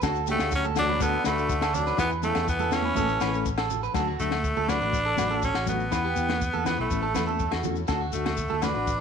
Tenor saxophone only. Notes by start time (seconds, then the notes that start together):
0.31 A3
0.56 C#4
0.79 D4
1.03 B3
1.27 A3
1.75 D4
2.00 B3
2.24 A3
2.49 B3
2.73 C#4
4.20 A3
4.69 D4
5.44 C#4
5.69 B3
6.68 B3
6.81 A3
8.13 A3
8.64 D4